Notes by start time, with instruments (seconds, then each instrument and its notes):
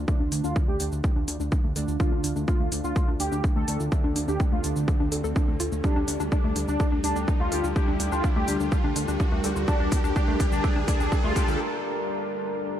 Already playing: ambient pad D4 A4 D5 F5, riser
0.08 analog polysynth D3 A3 D4, synth arpeggio sound D4, kick, shaker
0.20 analog synth bass D2, synth arpeggio sound D4
0.32 analog synth bass D2, synth arpeggio sound D4, open hi-hat, shaker
0.44 analog synth bass D2, synth arpeggio sound D4, analog synth lead F4, shaker
0.56 synth arpeggio sound D4, kick, shaker
0.68 analog synth bass D2, synth arpeggio sound A3, analog synth lead G4
0.80 analog synth bass D2, analog polysynth D3 A3 D4, synth arpeggio sound D4, open hi-hat, shaker
0.92 analog synth bass D2, synth arpeggio sound D4, shaker
1.04 synth arpeggio sound A4, kick, shaker
1.16 analog synth bass D2, synth arpeggio sound D4
1.28 analog synth bass D2, synth arpeggio sound D4, open hi-hat, shaker
1.40 analog synth bass D2, synth arpeggio sound D4, shaker
1.52 synth arpeggio sound D4, kick, shaker
1.64 analog synth bass D2, synth arpeggio sound A3
1.76 analog synth bass D2, analog polysynth D3 A3 D4, synth arpeggio sound A4, open hi-hat, shaker
1.88 analog synth bass D2, synth arpeggio sound F4, shaker
2.00 analog polysynth D3 A3 D4, synth arpeggio sound D4, analog synth lead F4, ambient pad C5, kick, shaker
2.12 analog synth bass D2, synth arpeggio sound D4
2.24 analog synth bass D2, synth arpeggio sound D4, open hi-hat, shaker
2.36 analog synth bass D2, synth arpeggio sound D4, shaker
2.48 synth arpeggio sound D4, analog synth lead F4, kick, shaker
2.60 analog synth bass D2, synth arpeggio sound A3
2.72 analog synth bass D2, analog polysynth D3 A3 D4, synth arpeggio sound D4, open hi-hat, shaker
2.84 analog synth bass D2, synth arpeggio sound D4, analog synth lead F4, shaker
2.96 synth arpeggio sound A4, kick, shaker
3.08 analog synth bass D2, synth arpeggio sound D4
3.20 analog synth bass D2, synth arpeggio sound D4, analog synth lead G4, open hi-hat, shaker
3.32 analog synth bass D2, synth arpeggio sound D4, shaker
3.44 synth arpeggio sound D4, kick, shaker
3.56 analog synth bass D2, synth arpeggio sound A3, analog synth lead A4
3.68 analog synth bass D2, analog polysynth D3 A3 D4, synth arpeggio sound A4, open hi-hat, shaker
3.80 analog synth bass D2, synth arpeggio sound F4, shaker
3.92 analog polysynth D3 A3 D4, synth arpeggio sound D4, kick, shaker
4.04 analog synth bass D2, synth arpeggio sound D4
4.16 analog synth bass D2, synth arpeggio sound D4, open hi-hat, shaker
4.28 analog synth bass D2, synth arpeggio sound D4, analog synth lead G4, shaker
4.40 synth arpeggio sound D4, kick, shaker
4.52 analog synth bass D2, synth arpeggio sound A3, analog synth lead F4
4.64 analog synth bass D2, analog polysynth D3 A3 D4, synth arpeggio sound D4, open hi-hat, shaker
4.76 analog synth bass D2, synth arpeggio sound D4, shaker
4.88 synth arpeggio sound A4, kick, shaker
5.00 analog synth bass D2, synth arpeggio sound D4
5.12 analog synth bass D2, synth arpeggio sound A4, open hi-hat, shaker
5.24 analog synth bass D2, synth arpeggio sound A4, shaker
5.36 synth arpeggio sound D4, kick, shaker
5.48 analog synth bass D2, synth arpeggio sound A3
5.60 analog synth bass D2, synth arpeggio sound F4, open hi-hat, shaker
5.72 analog synth bass D2, synth arpeggio sound A3, shaker
5.84 ambient pad G3 A#4, analog polysynth G3 D4 G4, synth arpeggio sound D4, analog synth lead D4, kick, shaker
5.96 analog synth bass D2, synth arpeggio sound D4
6.08 analog synth bass D2, synth arpeggio sound D4, open hi-hat, shaker
6.20 analog synth bass D2, synth arpeggio sound D4, shaker
6.32 analog synth lead D4, synth arpeggio sound D4, kick, shaker
6.44 analog synth bass D2, synth arpeggio sound A3
6.56 analog synth bass D2, analog polysynth G3 D4 G4, synth arpeggio sound D4, open hi-hat, shaker
6.68 analog synth bass D2, synth arpeggio sound D4, analog synth lead D4, shaker
6.80 synth arpeggio sound A4, kick, shaker
6.92 analog synth bass D2, synth arpeggio sound D4
7.04 analog synth bass D2, analog synth lead D4, synth arpeggio sound D4, open hi-hat, shaker
7.16 analog synth bass D2, synth arpeggio sound D4, shaker
7.28 synth arpeggio sound D4, kick, shaker
7.40 analog synth bass D2, synth arpeggio sound A3, analog synth lead F4
7.52 analog synth bass D2, analog polysynth G3 D4 G4, synth arpeggio sound A4, open hi-hat, shaker
7.64 analog synth bass D2, synth arpeggio sound F4, shaker
7.76 analog polysynth G3 D4 G4, synth arpeggio sound D4, kick, shaker
7.88 analog synth bass D2, synth arpeggio sound D4
8.00 analog synth bass D2, synth arpeggio sound D4, open hi-hat, shaker
8.12 analog synth bass D2, synth arpeggio sound D4, analog synth lead F4, shaker
8.24 synth arpeggio sound D4, kick, shaker
8.36 analog synth bass D2, synth arpeggio sound A3, analog synth lead G4
8.48 analog synth bass D2, analog polysynth G3 D4 G4, synth arpeggio sound D4, open hi-hat, shaker
8.60 analog synth bass D2, synth arpeggio sound D4, shaker
8.72 synth arpeggio sound A4, kick, shaker
8.84 analog synth bass D2, synth arpeggio sound D4
8.96 analog synth bass D2, synth arpeggio sound D4, open hi-hat, shaker
9.08 analog synth bass D2, synth arpeggio sound D4, shaker
9.20 synth arpeggio sound D4, kick, shaker
9.32 analog synth bass D2, synth arpeggio sound A3
9.44 analog synth bass D2, analog polysynth G3 D4 G4, synth arpeggio sound A4, open hi-hat, shaker
9.56 analog synth bass D2, synth arpeggio sound F4, shaker
9.68 analog polysynth G3 D4 G4, analog synth lead D4, synth arpeggio sound D4, kick, shaker
9.80 analog synth bass D2, synth arpeggio sound D4
9.92 analog synth bass D2, synth arpeggio sound D4, kick, open hi-hat, shaker
10.04 analog synth bass D2, synth arpeggio sound D4, shaker
10.16 analog synth lead D4, synth arpeggio sound D4, kick, shaker
10.28 analog synth bass D2, synth arpeggio sound A3
10.40 analog synth bass D2, analog polysynth G3 D4 G4, synth arpeggio sound D4, kick, open hi-hat, shaker
10.52 analog synth bass D2, synth arpeggio sound D4, analog synth lead D4, shaker
10.64 synth arpeggio sound A4, kick, shaker
10.76 analog synth bass D2, synth arpeggio sound D4
10.88 analog synth bass D2, analog synth lead D4, synth arpeggio sound D4, kick, open hi-hat, shaker
11.00 analog synth bass D2, synth arpeggio sound D4, shaker
11.12 synth arpeggio sound D4, kick, shaker
11.24 analog synth bass D2, synth arpeggio sound A3, analog synth lead F4
11.36 analog synth bass D2, analog polysynth G3 D4 G4, synth arpeggio sound A4, kick, open hi-hat, shaker
11.48 analog synth bass D2, synth arpeggio sound F4, shaker